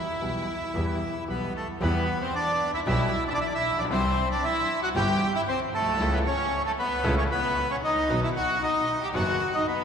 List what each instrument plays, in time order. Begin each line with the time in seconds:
Already playing: bandoneon E4 E5, violin section E4
0.21 grand piano B1 B2 E3 G3 B3 G4, double bass B1
0.74 double bass E2, grand piano E2 E3 G3 B3 G4
1.27 double bass B1, grand piano B1 B2 E3 G3 B3 G4, bandoneon B3 B4, violin section B3
1.55 violin section A3, bandoneon A3 A4
1.81 double bass E2, grand piano E2 E3 G3 B3 G4, string section G3 B3 E4, violin section B3, bandoneon B3 B4
2.21 violin section C4, bandoneon C4 C5
2.35 violin section D4, bandoneon D4 D5
2.74 violin section E4, bandoneon E4 E5
2.86 double bass B1, grand piano B1 B2 E3 G3 B3 G4, string section G3 B3 E4, violin section E4, bandoneon E4 E5
3.30 bandoneon D4 D5 E5, violin section E4
3.36 violin section D4
3.41 bandoneon E4 E5, violin section E4
3.46 violin section D4, bandoneon D5
3.54 bandoneon E4 E5, violin section E4
3.66 double bass A#1
3.72 grand piano A1
3.78 grand piano A#1, bandoneon D4 D5, violin section D4
3.84 grand piano B1
3.90 grand piano C2 C3 E3 G3 C4 G4, double bass C2, string section G3 C4 E4, bandoneon C4 C5, violin section C4
4.31 bandoneon D4 D5, violin section D4
4.44 bandoneon E4 E5, violin section E4
4.83 bandoneon F#4 F#5, violin section F#4
4.95 double bass G1, grand piano G1 G2 E3 G3 C4 G4, string section G3 C4 E4, bandoneon G4 G5, violin section G4
5.36 violin section E4, bandoneon E4 E5
5.48 violin section C4, bandoneon C4 C5
5.73 double bass B1, bandoneon A3 A4, violin section A3
5.80 grand piano A#1
5.86 grand piano B1
5.94 grand piano C2
5.98 double bass C#2, grand piano C#2 C#3 E3 A3 C#4 A4, string section A3 C#4 E4
6.13 violin section B3, bandoneon B3 B4
6.26 bandoneon C#4 C#5, violin section C#4
6.66 violin section A3, bandoneon A3 A4
6.78 violin section B3, bandoneon B3 B4
7.04 double bass C#2, grand piano C#2 C#3 E3 A3 C#4 A4, string section A3 C#4 E4
7.18 violin section C#4, bandoneon C#4 C#5
7.30 violin section B3, bandoneon B3 B4
7.71 violin section C#4, bandoneon C#4 C#5
7.84 violin section D#4, bandoneon D#4 D#5
8.09 double bass B1, grand piano B1 B2 D#3 F#3 B3 F#4, string section F#3 B3 D#4
8.23 violin section E4, bandoneon E4 E5
8.36 violin section F#4, bandoneon F#4 F#5
8.63 violin section D#4, bandoneon D#4 D#5
9.02 violin section G4, bandoneon G4 G5
9.14 grand piano F#1 F#2 D#3 F#3 B3 F#4, double bass F#1, string section F#3 B3 D#4, violin section F#4, bandoneon F#4 F#5
9.55 bandoneon D#4 D#5, violin section D#4
9.68 violin section B3, bandoneon B3 B4